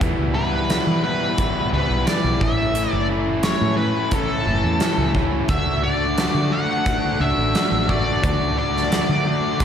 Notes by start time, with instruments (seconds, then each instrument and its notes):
0.01 overdriven electric guitar E2 B2 E3 G3 B3 E4, fingered electric bass E2, kick, closed hi-hat
0.18 fingered electric bass C#2
0.34 overdriven electric guitar E2 B2 E3 G3 B3 E4, lead electric guitar B4
0.69 overdriven electric guitar E2 B2 E3 G3 B3 E4, snare, closed hi-hat
0.87 fingered electric bass E3
1.03 overdriven electric guitar E2 B2 E3 G3 B3 E4, lead electric guitar B4
1.37 overdriven electric guitar E2 B2 E3 G3 B3 E4, kick, closed hi-hat
1.71 fingered electric bass C#2, overdriven electric guitar E2 B2 E3 G3 B3 E4, lead electric guitar B4
1.90 fingered electric bass B1
2.06 overdriven electric guitar E2 B2 E3 G3 B3 E4, lead electric guitar D5, snare, closed hi-hat
2.24 fingered electric bass B1
2.41 fingered electric bass A1, overdriven electric guitar A2 E3 A3 C#4 E4, lead electric guitar E5, kick
2.75 overdriven electric guitar A2 E3 A3 C#4 E4, closed hi-hat
2.91 fingered electric bass F#1, lead electric guitar D5
3.08 overdriven electric guitar A2 E3 A3 C#4 E4
3.43 overdriven electric guitar A2 E3 A3 C#4 E4, lead electric guitar C#5, snare, closed hi-hat
3.61 fingered electric bass A2
3.77 overdriven electric guitar A2 E3 A3 C#4 E4, lead electric guitar B4
4.11 overdriven electric guitar A2 E3 A3 C#4 E4, lead electric guitar A4, kick, closed hi-hat
4.46 fingered electric bass F#1, overdriven electric guitar A2 E3 A3 C#4 E4
4.64 fingered electric bass E2
4.80 overdriven electric guitar A2 E3 A3 C#4 E4, snare, closed hi-hat
4.98 fingered electric bass C#2
5.15 overdriven electric guitar A2 E3 A3 C#4 E4, kick
5.49 fingered electric bass D2, overdriven electric guitar D3 A3 D4 F#4, lead electric guitar E5, kick, closed hi-hat
5.66 fingered electric bass C#2
5.83 overdriven electric guitar D3 A3 D4 F#4, lead electric guitar D5
6.18 overdriven electric guitar D3 A3 D4 F#4, snare, closed hi-hat
6.34 fingered electric bass D3
6.52 overdriven electric guitar D3 A3 D4 F#4, lead electric guitar F#5
6.86 overdriven electric guitar D3 A3 D4 F#4, kick, closed hi-hat
7.20 fingered electric bass C#2, overdriven electric guitar D3 A3 D4 F#4, lead electric guitar E5
7.37 fingered electric bass A1
7.55 overdriven electric guitar D3 A3 D4 F#4, snare, closed hi-hat
7.72 fingered electric bass A1
7.88 overdriven electric guitar D3 A3 D4 F#4, lead electric guitar D5, kick
8.22 fingered electric bass D2, overdriven electric guitar D3 A3 D4 F#4, lead electric guitar D5, kick, closed hi-hat
8.40 fingered electric bass C#2
8.56 overdriven electric guitar D3 A3 D4 F#4, lead electric guitar D5
8.77 snare
8.91 overdriven electric guitar D3 A3 D4 F#4, snare, closed hi-hat
9.09 fingered electric bass D3
9.26 overdriven electric guitar D3 A3 D4 F#4
9.60 overdriven electric guitar D3 A3 D4 F#4, kick, closed hi-hat